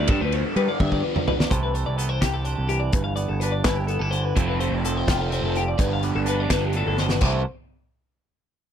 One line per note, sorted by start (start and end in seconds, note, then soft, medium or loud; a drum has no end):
0.07 0.78 G2 medium
0.07 0.20 G2 loud
0.07 0.79 D3 loud
0.07 0.79 F3 loud
0.07 0.79 B3 loud
0.07 0.21 A4 loud
0.07 kick loud
0.07 ride loud
0.12 0.78 D4 loud
0.21 0.42 D2 medium
0.21 0.34 B4 medium
0.32 0.46 C5 medium
0.32 ride medium
0.46 0.56 A4 medium
0.56 0.67 G3 loud
0.56 0.68 B4 medium
0.56 ride medium
0.69 0.80 D5 medium
0.79 1.01 G2 loud
0.79 1.51 G2 medium
0.79 1.51 D3 medium
0.79 1.50 F3 medium
0.79 1.50 B3 medium
0.79 1.50 D4 medium
0.79 0.92 E5 medium
0.79 kick medium
0.79 high tom medium
0.92 1.03 D5 medium
0.92 kick medium
1.03 1.15 B4 medium
1.15 1.27 D5 medium
1.15 mid tom medium
1.28 1.39 B4 medium
1.28 floor tom medium
1.39 1.50 D5 medium
1.39 snare medium
1.51 1.83 C2 medium
1.51 2.91 C3 medium
1.51 2.69 E3 medium
1.51 1.74 A3 medium
1.51 1.98 D4 medium
1.51 2.21 E4 soft
1.51 1.62 C5 medium
1.51 kick loud
1.51 closed hi-hat medium
1.63 1.74 B4 medium
1.74 2.95 A3 medium
1.74 1.86 C5 medium
1.74 closed hi-hat medium
1.86 2.19 C2 medium
1.86 1.97 D5 medium
1.98 2.09 B3 medium
1.98 2.09 A4 medium
1.98 closed hi-hat medium
2.09 2.45 D4 soft
2.09 2.22 C5 medium
2.21 2.54 C2 medium
2.21 2.90 G4 medium
2.21 2.34 G4 medium
2.21 kick medium
2.21 snare loud
2.21 closed hi-hat loud
2.34 2.45 A4 medium
2.45 2.91 D4 medium
2.45 2.56 C5 medium
2.45 closed hi-hat medium
2.56 2.90 C2 medium
2.56 2.69 A4 medium
2.69 3.46 E3 medium
2.69 2.81 G4 medium
2.69 closed hi-hat medium
2.80 2.93 D5 medium
2.92 3.25 G1 medium
2.92 4.33 G2 medium
2.92 3.03 B4 medium
2.92 kick loud
2.92 closed hi-hat loud
3.04 3.15 F5 medium
3.16 3.88 B3 medium
3.16 3.29 D5 medium
3.16 closed hi-hat medium
3.28 3.61 G1 medium
3.28 3.40 A4 medium
3.40 3.89 D4 medium
3.40 3.53 B4 medium
3.40 closed hi-hat medium
3.52 3.64 D5 medium
3.64 3.97 G1 medium
3.64 4.38 E4 medium
3.64 3.77 B4 medium
3.64 kick medium
3.64 snare loud
3.64 closed hi-hat medium
3.76 3.87 G4 medium
3.87 4.01 B3 medium
3.87 3.98 A4 medium
3.87 closed hi-hat medium
3.99 4.32 G1 medium
3.99 4.37 D4 soft
3.99 4.12 A4 medium
4.11 4.36 D3 medium
4.11 4.24 C5 medium
4.11 closed hi-hat medium
4.24 4.36 B4 medium
4.36 4.68 F1 medium
4.36 5.76 F2 medium
4.36 4.60 C3 medium
4.36 4.60 F3 medium
4.36 5.54 F3 medium
4.36 4.59 A3 loud
4.36 4.61 A3 medium
4.36 4.59 C4 loud
4.36 4.84 C4 medium
4.36 5.07 E4 medium
4.36 4.47 C5 loud
4.36 kick loud
4.36 closed hi-hat medium
4.48 4.60 B4 medium
4.60 4.83 C3 medium
4.60 4.83 F3 medium
4.60 4.84 A3 medium
4.60 5.82 A3 soft
4.60 4.84 C4 medium
4.60 4.74 C5 medium
4.60 closed hi-hat medium
4.71 5.03 F1 medium
4.71 4.85 D5 medium
4.84 5.08 C3 medium
4.84 5.08 F3 medium
4.84 5.07 A3 medium
4.84 5.29 C4 medium
4.84 5.07 C4 medium
4.84 4.97 A4 medium
4.84 closed hi-hat medium
4.97 5.08 C5 medium
5.07 5.39 F1 loud
5.07 5.30 C3 medium
5.07 5.31 F3 medium
5.07 5.31 A3 medium
5.07 5.31 C4 medium
5.07 5.76 F4 medium
5.07 5.21 G4 medium
5.07 kick medium
5.07 snare loud
5.07 closed hi-hat medium
5.21 5.33 A4 medium
5.30 5.62 C3 medium
5.30 5.63 F3 medium
5.30 5.63 A3 medium
5.30 5.75 C4 medium
5.30 5.63 C4 medium
5.30 5.44 C5 medium
5.30 closed hi-hat medium
5.42 5.74 F1 loud
5.42 5.56 A4 medium
5.55 5.76 F3 medium
5.55 5.68 G4 loud
5.55 closed hi-hat medium
5.68 5.80 D5 medium
5.78 6.11 G1 medium
5.78 6.48 G2 medium
5.78 6.02 D3 loud
5.78 6.02 F3 loud
5.78 6.02 B3 loud
5.78 6.01 D4 medium
5.78 5.91 B4 medium
5.78 kick loud
5.78 closed hi-hat medium
5.93 6.04 F5 medium
6.03 6.25 D3 medium
6.03 6.26 F3 medium
6.03 6.26 B3 medium
6.03 7.19 B3 medium
6.03 6.26 D4 medium
6.03 6.15 D5 medium
6.03 closed hi-hat medium
6.15 6.46 G1 medium
6.15 6.27 A4 medium
6.25 6.50 D3 medium
6.25 6.50 F3 medium
6.25 6.50 B3 medium
6.25 7.18 D4 medium
6.25 6.49 D4 medium
6.25 6.40 B4 medium
6.25 closed hi-hat medium
6.40 6.51 D5 medium
6.49 6.82 G1 loud
6.49 6.73 G2 medium
6.49 6.73 D3 medium
6.49 6.72 F3 medium
6.49 6.73 B3 medium
6.49 6.73 D4 loud
6.49 6.65 B4 medium
6.49 kick medium
6.49 snare loud
6.49 closed hi-hat loud
6.65 6.75 G4 medium
6.73 6.98 A2 medium
6.73 7.05 D3 medium
6.73 7.05 F3 medium
6.73 7.05 B3 medium
6.73 7.05 D4 medium
6.73 6.86 A4 medium
6.73 closed hi-hat medium
6.87 7.18 G1 medium
6.87 6.98 A4 medium
6.97 7.22 B2 medium
6.97 7.10 C5 medium
6.97 snare medium
7.09 7.21 B4 medium
7.09 snare medium
7.21 7.43 C2 loud
7.21 7.40 C3 loud
7.21 7.43 C3 medium
7.21 7.44 E3 medium
7.21 7.40 G3 medium
7.21 7.44 A3 medium
7.21 7.41 C4 loud
7.21 7.41 E4 loud
7.21 7.45 C5 medium
7.21 kick loud
7.21 crash loud
7.25 7.45 D4 medium
7.25 7.45 E4 soft